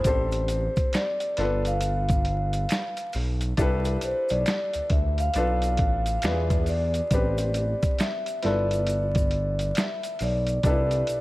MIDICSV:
0, 0, Header, 1, 5, 480
1, 0, Start_track
1, 0, Key_signature, 0, "minor"
1, 0, Tempo, 882353
1, 28, Time_signature, 4, 2, 24, 8
1, 6097, End_track
2, 0, Start_track
2, 0, Title_t, "Vibraphone"
2, 0, Program_c, 0, 11
2, 0, Note_on_c, 0, 72, 84
2, 491, Note_off_c, 0, 72, 0
2, 517, Note_on_c, 0, 74, 94
2, 908, Note_on_c, 0, 77, 98
2, 916, Note_off_c, 0, 74, 0
2, 1690, Note_off_c, 0, 77, 0
2, 2197, Note_on_c, 0, 72, 91
2, 2342, Note_on_c, 0, 74, 94
2, 2349, Note_off_c, 0, 72, 0
2, 2647, Note_off_c, 0, 74, 0
2, 2675, Note_on_c, 0, 76, 105
2, 2826, Note_on_c, 0, 77, 107
2, 2828, Note_off_c, 0, 76, 0
2, 3363, Note_off_c, 0, 77, 0
2, 3369, Note_on_c, 0, 77, 76
2, 3392, Note_off_c, 0, 77, 0
2, 3397, Note_on_c, 0, 76, 97
2, 3634, Note_on_c, 0, 74, 93
2, 3639, Note_off_c, 0, 76, 0
2, 4329, Note_off_c, 0, 74, 0
2, 4354, Note_on_c, 0, 76, 100
2, 4574, Note_off_c, 0, 76, 0
2, 4592, Note_on_c, 0, 74, 104
2, 5320, Note_on_c, 0, 76, 92
2, 5331, Note_off_c, 0, 74, 0
2, 5560, Note_on_c, 0, 74, 88
2, 5561, Note_off_c, 0, 76, 0
2, 5778, Note_off_c, 0, 74, 0
2, 5795, Note_on_c, 0, 74, 97
2, 6097, Note_off_c, 0, 74, 0
2, 6097, End_track
3, 0, Start_track
3, 0, Title_t, "Upright piano"
3, 0, Program_c, 1, 0
3, 0, Control_c, 1, 64, 127
3, 29, Note_on_c, 1, 60, 61
3, 32, Note_on_c, 1, 62, 58
3, 35, Control_c, 1, 64, 0
3, 35, Note_on_c, 1, 67, 57
3, 38, Note_on_c, 1, 69, 59
3, 39, Note_on_c, 1, 72, 72
3, 139, Control_c, 1, 64, 127
3, 742, Note_off_c, 1, 62, 0
3, 745, Note_on_c, 1, 59, 63
3, 748, Note_off_c, 1, 60, 0
3, 750, Note_on_c, 1, 62, 60
3, 751, Note_off_c, 1, 67, 0
3, 751, Note_off_c, 1, 69, 0
3, 753, Note_off_c, 1, 72, 0
3, 754, Note_on_c, 1, 65, 58
3, 755, Control_c, 1, 64, 0
3, 760, Note_on_c, 1, 69, 62
3, 765, Note_on_c, 1, 71, 70
3, 863, Control_c, 1, 64, 127
3, 1924, Note_off_c, 1, 59, 0
3, 1927, Note_off_c, 1, 62, 0
3, 1929, Note_off_c, 1, 65, 0
3, 1932, Note_off_c, 1, 69, 0
3, 1935, Note_off_c, 1, 71, 0
3, 1943, Note_on_c, 1, 62, 77
3, 1949, Note_on_c, 1, 64, 68
3, 1953, Note_on_c, 1, 67, 66
3, 1955, Control_c, 1, 64, 0
3, 1959, Note_on_c, 1, 69, 69
3, 1965, Note_on_c, 1, 71, 84
3, 2045, Control_c, 1, 64, 127
3, 2886, Note_off_c, 1, 62, 0
3, 2889, Note_off_c, 1, 64, 0
3, 2891, Note_off_c, 1, 67, 0
3, 2894, Note_off_c, 1, 69, 0
3, 2897, Note_off_c, 1, 71, 0
3, 2914, Note_on_c, 1, 62, 68
3, 2915, Control_c, 1, 64, 0
3, 2916, Note_on_c, 1, 59, 61
3, 2921, Note_on_c, 1, 65, 62
3, 2923, Note_on_c, 1, 69, 63
3, 2925, Note_on_c, 1, 71, 74
3, 3010, Control_c, 1, 64, 127
3, 3386, Note_off_c, 1, 59, 0
3, 3388, Note_off_c, 1, 62, 0
3, 3390, Note_off_c, 1, 65, 0
3, 3394, Note_off_c, 1, 71, 0
3, 3395, Note_off_c, 1, 69, 0
3, 3395, Control_c, 1, 64, 0
3, 3395, Note_on_c, 1, 59, 66
3, 3396, Note_on_c, 1, 62, 65
3, 3398, Note_on_c, 1, 65, 59
3, 3400, Note_on_c, 1, 67, 48
3, 3402, Note_on_c, 1, 71, 71
3, 3435, Note_on_c, 1, 68, 61
3, 3439, Note_off_c, 1, 67, 0
3, 3488, Control_c, 1, 64, 127
3, 3867, Note_off_c, 1, 59, 0
3, 3872, Note_off_c, 1, 62, 0
3, 3873, Note_off_c, 1, 65, 0
3, 3874, Control_c, 1, 64, 0
3, 3875, Note_off_c, 1, 71, 0
3, 3875, Note_on_c, 1, 59, 62
3, 3878, Note_on_c, 1, 60, 58
3, 3881, Note_on_c, 1, 62, 57
3, 3885, Note_on_c, 1, 67, 62
3, 3885, Note_on_c, 1, 71, 73
3, 3891, Note_off_c, 1, 68, 0
3, 3984, Control_c, 1, 64, 127
3, 4574, Note_off_c, 1, 59, 0
3, 4582, Note_on_c, 1, 59, 67
3, 4588, Note_on_c, 1, 64, 58
3, 4593, Note_off_c, 1, 60, 0
3, 4594, Note_off_c, 1, 62, 0
3, 4594, Note_on_c, 1, 65, 61
3, 4595, Note_off_c, 1, 71, 0
3, 4595, Control_c, 1, 64, 0
3, 4596, Note_off_c, 1, 67, 0
3, 4598, Note_on_c, 1, 69, 61
3, 4603, Note_on_c, 1, 71, 72
3, 4697, Control_c, 1, 64, 127
3, 5763, Note_off_c, 1, 59, 0
3, 5766, Note_off_c, 1, 64, 0
3, 5769, Note_off_c, 1, 65, 0
3, 5771, Note_off_c, 1, 69, 0
3, 5774, Note_off_c, 1, 71, 0
3, 5784, Note_on_c, 1, 62, 65
3, 5791, Note_on_c, 1, 63, 48
3, 5795, Control_c, 1, 64, 0
3, 5796, Note_on_c, 1, 67, 58
3, 5802, Note_on_c, 1, 69, 60
3, 5807, Note_on_c, 1, 71, 71
3, 5825, Note_on_c, 1, 64, 59
3, 5834, Note_off_c, 1, 63, 0
3, 5901, Control_c, 1, 64, 127
3, 6097, Note_off_c, 1, 62, 0
3, 6097, Note_off_c, 1, 64, 0
3, 6097, Note_off_c, 1, 67, 0
3, 6097, Note_off_c, 1, 69, 0
3, 6097, Note_off_c, 1, 71, 0
3, 6097, End_track
4, 0, Start_track
4, 0, Title_t, "Analog synth bass"
4, 0, Program_c, 2, 38
4, 29, Note_on_c, 2, 33, 98
4, 374, Note_off_c, 2, 33, 0
4, 752, Note_on_c, 2, 31, 100
4, 1448, Note_off_c, 2, 31, 0
4, 1713, Note_on_c, 2, 35, 93
4, 1922, Note_off_c, 2, 35, 0
4, 1950, Note_on_c, 2, 36, 112
4, 2160, Note_off_c, 2, 36, 0
4, 2192, Note_on_c, 2, 35, 50
4, 2252, Note_off_c, 2, 35, 0
4, 2344, Note_on_c, 2, 35, 90
4, 2419, Note_off_c, 2, 35, 0
4, 2585, Note_on_c, 2, 38, 51
4, 2619, Note_off_c, 2, 38, 0
4, 2669, Note_on_c, 2, 38, 86
4, 2880, Note_off_c, 2, 38, 0
4, 2912, Note_on_c, 2, 35, 101
4, 3153, Note_on_c, 2, 33, 88
4, 3162, Note_off_c, 2, 35, 0
4, 3362, Note_off_c, 2, 33, 0
4, 3393, Note_on_c, 2, 40, 99
4, 3814, Note_off_c, 2, 40, 0
4, 3870, Note_on_c, 2, 33, 103
4, 4215, Note_off_c, 2, 33, 0
4, 4593, Note_on_c, 2, 31, 96
4, 5289, Note_off_c, 2, 31, 0
4, 5553, Note_on_c, 2, 35, 93
4, 5762, Note_off_c, 2, 35, 0
4, 5789, Note_on_c, 2, 36, 109
4, 6000, Note_off_c, 2, 36, 0
4, 6035, Note_on_c, 2, 35, 46
4, 6094, Note_off_c, 2, 35, 0
4, 6097, End_track
5, 0, Start_track
5, 0, Title_t, "Drums"
5, 23, Note_on_c, 9, 42, 83
5, 26, Note_on_c, 9, 36, 105
5, 27, Note_on_c, 9, 82, 59
5, 77, Note_off_c, 9, 42, 0
5, 81, Note_off_c, 9, 36, 0
5, 81, Note_off_c, 9, 82, 0
5, 173, Note_on_c, 9, 82, 49
5, 176, Note_on_c, 9, 42, 54
5, 227, Note_off_c, 9, 82, 0
5, 231, Note_off_c, 9, 42, 0
5, 262, Note_on_c, 9, 42, 67
5, 268, Note_on_c, 9, 82, 51
5, 317, Note_off_c, 9, 42, 0
5, 323, Note_off_c, 9, 82, 0
5, 415, Note_on_c, 9, 82, 44
5, 419, Note_on_c, 9, 36, 94
5, 419, Note_on_c, 9, 42, 50
5, 469, Note_off_c, 9, 82, 0
5, 473, Note_off_c, 9, 42, 0
5, 474, Note_off_c, 9, 36, 0
5, 505, Note_on_c, 9, 42, 75
5, 512, Note_on_c, 9, 26, 58
5, 512, Note_on_c, 9, 82, 56
5, 516, Note_on_c, 9, 38, 104
5, 559, Note_off_c, 9, 42, 0
5, 566, Note_off_c, 9, 26, 0
5, 566, Note_off_c, 9, 82, 0
5, 571, Note_off_c, 9, 38, 0
5, 654, Note_on_c, 9, 42, 47
5, 658, Note_on_c, 9, 82, 43
5, 709, Note_off_c, 9, 42, 0
5, 712, Note_off_c, 9, 82, 0
5, 745, Note_on_c, 9, 42, 64
5, 758, Note_on_c, 9, 38, 33
5, 799, Note_off_c, 9, 42, 0
5, 812, Note_off_c, 9, 38, 0
5, 897, Note_on_c, 9, 42, 49
5, 905, Note_on_c, 9, 82, 47
5, 952, Note_off_c, 9, 42, 0
5, 960, Note_off_c, 9, 82, 0
5, 982, Note_on_c, 9, 42, 84
5, 989, Note_on_c, 9, 82, 66
5, 1037, Note_off_c, 9, 42, 0
5, 1043, Note_off_c, 9, 82, 0
5, 1135, Note_on_c, 9, 42, 45
5, 1141, Note_on_c, 9, 36, 108
5, 1143, Note_on_c, 9, 82, 48
5, 1189, Note_off_c, 9, 42, 0
5, 1195, Note_off_c, 9, 36, 0
5, 1197, Note_off_c, 9, 82, 0
5, 1223, Note_on_c, 9, 42, 62
5, 1277, Note_off_c, 9, 42, 0
5, 1377, Note_on_c, 9, 42, 50
5, 1378, Note_on_c, 9, 82, 50
5, 1431, Note_off_c, 9, 42, 0
5, 1433, Note_off_c, 9, 82, 0
5, 1463, Note_on_c, 9, 42, 93
5, 1472, Note_on_c, 9, 26, 67
5, 1472, Note_on_c, 9, 82, 66
5, 1480, Note_on_c, 9, 38, 113
5, 1518, Note_off_c, 9, 42, 0
5, 1527, Note_off_c, 9, 26, 0
5, 1527, Note_off_c, 9, 82, 0
5, 1534, Note_off_c, 9, 38, 0
5, 1615, Note_on_c, 9, 42, 49
5, 1616, Note_on_c, 9, 82, 42
5, 1670, Note_off_c, 9, 42, 0
5, 1670, Note_off_c, 9, 82, 0
5, 1702, Note_on_c, 9, 82, 46
5, 1703, Note_on_c, 9, 46, 44
5, 1756, Note_off_c, 9, 82, 0
5, 1758, Note_off_c, 9, 46, 0
5, 1853, Note_on_c, 9, 42, 52
5, 1856, Note_on_c, 9, 82, 51
5, 1908, Note_off_c, 9, 42, 0
5, 1911, Note_off_c, 9, 82, 0
5, 1944, Note_on_c, 9, 42, 84
5, 1947, Note_on_c, 9, 36, 117
5, 1950, Note_on_c, 9, 82, 59
5, 1998, Note_off_c, 9, 42, 0
5, 2002, Note_off_c, 9, 36, 0
5, 2005, Note_off_c, 9, 82, 0
5, 2094, Note_on_c, 9, 82, 49
5, 2096, Note_on_c, 9, 42, 53
5, 2148, Note_off_c, 9, 82, 0
5, 2150, Note_off_c, 9, 42, 0
5, 2183, Note_on_c, 9, 42, 68
5, 2187, Note_on_c, 9, 82, 57
5, 2238, Note_off_c, 9, 42, 0
5, 2241, Note_off_c, 9, 82, 0
5, 2333, Note_on_c, 9, 82, 42
5, 2341, Note_on_c, 9, 42, 50
5, 2387, Note_off_c, 9, 82, 0
5, 2395, Note_off_c, 9, 42, 0
5, 2426, Note_on_c, 9, 42, 78
5, 2427, Note_on_c, 9, 26, 57
5, 2427, Note_on_c, 9, 82, 57
5, 2437, Note_on_c, 9, 38, 109
5, 2480, Note_off_c, 9, 42, 0
5, 2481, Note_off_c, 9, 26, 0
5, 2481, Note_off_c, 9, 82, 0
5, 2491, Note_off_c, 9, 38, 0
5, 2576, Note_on_c, 9, 42, 46
5, 2578, Note_on_c, 9, 82, 46
5, 2630, Note_off_c, 9, 42, 0
5, 2632, Note_off_c, 9, 82, 0
5, 2664, Note_on_c, 9, 42, 64
5, 2667, Note_on_c, 9, 36, 91
5, 2718, Note_off_c, 9, 42, 0
5, 2721, Note_off_c, 9, 36, 0
5, 2817, Note_on_c, 9, 42, 47
5, 2827, Note_on_c, 9, 82, 49
5, 2872, Note_off_c, 9, 42, 0
5, 2881, Note_off_c, 9, 82, 0
5, 2903, Note_on_c, 9, 42, 89
5, 2912, Note_on_c, 9, 82, 67
5, 2957, Note_off_c, 9, 42, 0
5, 2966, Note_off_c, 9, 82, 0
5, 3056, Note_on_c, 9, 42, 45
5, 3065, Note_on_c, 9, 82, 46
5, 3111, Note_off_c, 9, 42, 0
5, 3119, Note_off_c, 9, 82, 0
5, 3141, Note_on_c, 9, 42, 62
5, 3150, Note_on_c, 9, 36, 83
5, 3195, Note_off_c, 9, 42, 0
5, 3204, Note_off_c, 9, 36, 0
5, 3296, Note_on_c, 9, 42, 51
5, 3299, Note_on_c, 9, 82, 52
5, 3350, Note_off_c, 9, 42, 0
5, 3353, Note_off_c, 9, 82, 0
5, 3384, Note_on_c, 9, 42, 95
5, 3390, Note_on_c, 9, 26, 64
5, 3390, Note_on_c, 9, 82, 65
5, 3400, Note_on_c, 9, 38, 115
5, 3438, Note_off_c, 9, 42, 0
5, 3444, Note_off_c, 9, 26, 0
5, 3444, Note_off_c, 9, 82, 0
5, 3454, Note_off_c, 9, 38, 0
5, 3537, Note_on_c, 9, 42, 46
5, 3538, Note_on_c, 9, 36, 91
5, 3538, Note_on_c, 9, 82, 44
5, 3592, Note_off_c, 9, 42, 0
5, 3593, Note_off_c, 9, 36, 0
5, 3593, Note_off_c, 9, 82, 0
5, 3624, Note_on_c, 9, 46, 45
5, 3627, Note_on_c, 9, 82, 45
5, 3678, Note_off_c, 9, 46, 0
5, 3681, Note_off_c, 9, 82, 0
5, 3775, Note_on_c, 9, 42, 51
5, 3778, Note_on_c, 9, 82, 50
5, 3829, Note_off_c, 9, 42, 0
5, 3833, Note_off_c, 9, 82, 0
5, 3866, Note_on_c, 9, 42, 81
5, 3868, Note_on_c, 9, 36, 107
5, 3869, Note_on_c, 9, 82, 59
5, 3920, Note_off_c, 9, 42, 0
5, 3922, Note_off_c, 9, 36, 0
5, 3924, Note_off_c, 9, 82, 0
5, 4014, Note_on_c, 9, 82, 50
5, 4015, Note_on_c, 9, 42, 56
5, 4069, Note_off_c, 9, 82, 0
5, 4070, Note_off_c, 9, 42, 0
5, 4103, Note_on_c, 9, 42, 72
5, 4108, Note_on_c, 9, 82, 53
5, 4157, Note_off_c, 9, 42, 0
5, 4162, Note_off_c, 9, 82, 0
5, 4258, Note_on_c, 9, 42, 49
5, 4258, Note_on_c, 9, 82, 43
5, 4259, Note_on_c, 9, 36, 94
5, 4312, Note_off_c, 9, 42, 0
5, 4312, Note_off_c, 9, 82, 0
5, 4314, Note_off_c, 9, 36, 0
5, 4344, Note_on_c, 9, 42, 76
5, 4352, Note_on_c, 9, 26, 58
5, 4352, Note_on_c, 9, 82, 58
5, 4355, Note_on_c, 9, 38, 107
5, 4398, Note_off_c, 9, 42, 0
5, 4406, Note_off_c, 9, 26, 0
5, 4406, Note_off_c, 9, 82, 0
5, 4410, Note_off_c, 9, 38, 0
5, 4495, Note_on_c, 9, 42, 47
5, 4502, Note_on_c, 9, 82, 46
5, 4549, Note_off_c, 9, 42, 0
5, 4557, Note_off_c, 9, 82, 0
5, 4583, Note_on_c, 9, 42, 65
5, 4596, Note_on_c, 9, 38, 32
5, 4638, Note_off_c, 9, 42, 0
5, 4650, Note_off_c, 9, 38, 0
5, 4738, Note_on_c, 9, 42, 47
5, 4749, Note_on_c, 9, 82, 47
5, 4792, Note_off_c, 9, 42, 0
5, 4804, Note_off_c, 9, 82, 0
5, 4823, Note_on_c, 9, 42, 82
5, 4837, Note_on_c, 9, 82, 65
5, 4877, Note_off_c, 9, 42, 0
5, 4891, Note_off_c, 9, 82, 0
5, 4976, Note_on_c, 9, 42, 43
5, 4981, Note_on_c, 9, 36, 109
5, 4991, Note_on_c, 9, 82, 45
5, 5031, Note_off_c, 9, 42, 0
5, 5035, Note_off_c, 9, 36, 0
5, 5046, Note_off_c, 9, 82, 0
5, 5063, Note_on_c, 9, 42, 61
5, 5118, Note_off_c, 9, 42, 0
5, 5217, Note_on_c, 9, 42, 52
5, 5226, Note_on_c, 9, 82, 48
5, 5272, Note_off_c, 9, 42, 0
5, 5281, Note_off_c, 9, 82, 0
5, 5305, Note_on_c, 9, 42, 88
5, 5315, Note_on_c, 9, 26, 67
5, 5315, Note_on_c, 9, 82, 62
5, 5321, Note_on_c, 9, 38, 120
5, 5359, Note_off_c, 9, 42, 0
5, 5370, Note_off_c, 9, 26, 0
5, 5370, Note_off_c, 9, 82, 0
5, 5375, Note_off_c, 9, 38, 0
5, 5459, Note_on_c, 9, 42, 48
5, 5463, Note_on_c, 9, 82, 43
5, 5513, Note_off_c, 9, 42, 0
5, 5517, Note_off_c, 9, 82, 0
5, 5544, Note_on_c, 9, 46, 43
5, 5551, Note_on_c, 9, 82, 45
5, 5598, Note_off_c, 9, 46, 0
5, 5606, Note_off_c, 9, 82, 0
5, 5693, Note_on_c, 9, 42, 50
5, 5704, Note_on_c, 9, 82, 50
5, 5748, Note_off_c, 9, 42, 0
5, 5758, Note_off_c, 9, 82, 0
5, 5784, Note_on_c, 9, 42, 81
5, 5787, Note_on_c, 9, 36, 121
5, 5792, Note_on_c, 9, 82, 59
5, 5839, Note_off_c, 9, 42, 0
5, 5841, Note_off_c, 9, 36, 0
5, 5847, Note_off_c, 9, 82, 0
5, 5934, Note_on_c, 9, 42, 55
5, 5939, Note_on_c, 9, 82, 48
5, 5989, Note_off_c, 9, 42, 0
5, 5993, Note_off_c, 9, 82, 0
5, 6022, Note_on_c, 9, 42, 69
5, 6034, Note_on_c, 9, 82, 54
5, 6077, Note_off_c, 9, 42, 0
5, 6088, Note_off_c, 9, 82, 0
5, 6097, End_track
0, 0, End_of_file